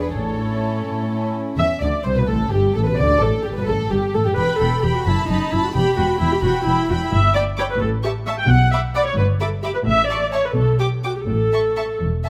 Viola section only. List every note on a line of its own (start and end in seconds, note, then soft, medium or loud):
0.00 0.13 G#4 soft
0.13 1.20 C#5 soft
1.58 1.66 E5 medium
1.81 2.04 D5 soft
2.05 2.16 C5 medium
2.18 2.29 B4 medium
2.29 2.37 A4 medium
2.52 2.75 G4 medium
2.76 2.87 A4 medium
2.87 2.99 B4 medium
2.99 3.22 D5 medium
3.23 3.46 A4 medium
3.45 3.57 G4 soft
3.58 3.63 B4 medium
3.68 3.76 A4 medium
3.92 4.14 G4 medium
4.14 4.26 A4 medium
4.26 4.38 G4 medium
4.36 4.60 B4 medium
4.59 4.83 A4 medium
4.83 4.95 G4 medium
4.95 5.07 F#4 medium
5.07 5.30 E4 medium
5.29 5.52 D#4 medium
5.52 5.64 E4 medium
5.64 5.69 F#4 medium
5.74 5.97 G4 medium
5.97 6.20 F#4 medium
6.19 6.32 E4 medium
6.33 6.44 G4 medium
6.43 6.66 F#4 medium
6.66 6.89 E4 medium
6.89 7.01 F#4 medium
7.01 7.12 E4 medium
7.11 7.35 E5 medium
7.34 7.42 D5 medium
7.58 7.63 C#5 medium
7.70 7.80 B4 medium
7.81 7.89 A4 medium
8.03 8.11 G4 medium
8.27 8.31 E5 medium
8.38 8.49 G5 medium
8.48 8.71 F#5 medium
8.72 8.80 E5 medium
8.95 9.06 D5 medium
9.06 9.17 C#5 medium
9.18 9.26 B4 medium
9.41 9.49 A4 medium
9.63 9.74 G4 medium
9.74 9.79 B4 medium
9.85 10.08 E5 medium
10.09 10.32 D5 medium
10.33 10.44 C#5 medium
10.45 10.56 B4 medium
10.56 10.79 A4 medium
10.79 10.87 G4 medium
11.04 11.16 F#4 soft
11.16 11.21 G4 soft
11.28 12.00 A4 medium